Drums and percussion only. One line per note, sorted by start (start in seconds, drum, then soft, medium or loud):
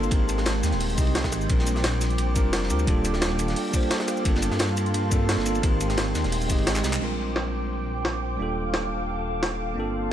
0.04 ride soft
0.04 shaker soft
0.11 kick loud
0.11 closed hi-hat medium
0.11 ride medium
0.29 closed hi-hat medium
0.29 ride medium
0.29 shaker medium
0.38 snare soft
0.46 snare loud
0.46 closed hi-hat medium
0.46 ride medium
0.63 snare medium
0.63 closed hi-hat medium
0.63 ride medium
0.63 shaker medium
0.72 snare soft
0.72 closed hi-hat soft
0.80 closed hi-hat medium
0.80 open hi-hat medium
0.90 closed hi-hat soft
0.98 kick loud
0.98 closed hi-hat medium
0.98 ride medium
0.98 shaker medium
1.07 ride soft
1.15 snare loud
1.15 closed hi-hat medium
1.15 ride medium
1.24 kick medium
1.24 snare medium
1.32 snare soft
1.32 closed hi-hat medium
1.32 ride medium
1.32 shaker medium
1.41 shaker soft
1.49 kick loud
1.49 closed hi-hat medium
1.49 ride medium
1.59 snare soft
1.67 closed hi-hat medium
1.67 ride medium
1.67 shaker medium
1.76 snare soft
1.84 snare loud
1.84 closed hi-hat medium
1.84 ride medium
1.93 ride soft
2.01 snare soft
2.01 closed hi-hat medium
2.01 ride medium
2.01 shaker medium
2.10 closed hi-hat soft
2.18 closed hi-hat medium
2.18 ride medium
2.36 kick loud
2.36 closed hi-hat medium
2.36 ride medium
2.36 shaker medium
2.53 snare loud
2.53 closed hi-hat medium
2.53 ride medium
2.63 snare medium
2.70 closed hi-hat medium
2.70 ride medium
2.70 shaker medium
2.79 ride soft
2.79 shaker soft
2.87 kick loud
2.87 closed hi-hat medium
2.87 ride medium
3.05 closed hi-hat medium
3.05 ride medium
3.05 shaker medium
3.13 snare soft
3.21 snare loud
3.21 closed hi-hat medium
3.21 ride medium
3.39 closed hi-hat medium
3.39 ride medium
3.39 shaker medium
3.48 snare soft
3.48 closed hi-hat soft
3.56 closed hi-hat medium
3.56 open hi-hat medium
3.74 kick loud
3.74 closed hi-hat medium
3.74 ride medium
3.74 shaker medium
3.83 ride soft
3.91 snare loud
3.91 closed hi-hat medium
3.91 ride medium
4.00 snare soft
4.00 snare medium
4.08 snare soft
4.08 closed hi-hat medium
4.08 ride medium
4.08 shaker medium
4.17 shaker soft
4.25 kick loud
4.25 closed hi-hat medium
4.25 ride medium
4.35 snare medium
4.42 closed hi-hat medium
4.42 ride medium
4.42 shaker medium
4.51 snare soft
4.59 snare loud
4.59 closed hi-hat loud
4.59 ride loud
4.69 ride soft
4.77 closed hi-hat medium
4.77 ride medium
4.77 shaker medium
4.86 closed hi-hat soft
4.94 closed hi-hat medium
4.94 ride medium
5.11 kick loud
5.11 closed hi-hat medium
5.11 ride medium
5.11 shaker medium
5.29 snare loud
5.29 closed hi-hat loud
5.29 ride medium
5.39 snare medium
5.46 closed hi-hat medium
5.46 ride medium
5.46 shaker medium
5.55 ride soft
5.55 shaker soft
5.63 kick loud
5.63 closed hi-hat medium
5.63 ride medium
5.81 closed hi-hat medium
5.81 ride medium
5.81 shaker medium
5.89 snare soft
5.89 closed hi-hat soft
5.97 snare loud
5.97 closed hi-hat loud
5.97 ride medium
6.14 snare medium
6.14 closed hi-hat medium
6.14 ride medium
6.14 shaker medium
6.24 snare soft
6.24 closed hi-hat soft
6.32 closed hi-hat loud
6.32 open hi-hat medium
6.42 closed hi-hat soft
6.42 shaker soft
6.50 kick loud
6.50 closed hi-hat medium
6.50 ride medium
6.50 shaker medium
6.58 ride soft
6.67 snare loud
6.67 closed hi-hat loud
6.67 ride medium
6.76 snare medium
6.76 clap medium
6.84 snare medium
6.84 closed hi-hat medium
6.84 ride medium
6.84 shaker medium
6.93 clap loud
6.93 shaker soft
7.01 crash medium
7.36 snare loud
8.05 snare loud
8.74 snare loud
9.43 snare loud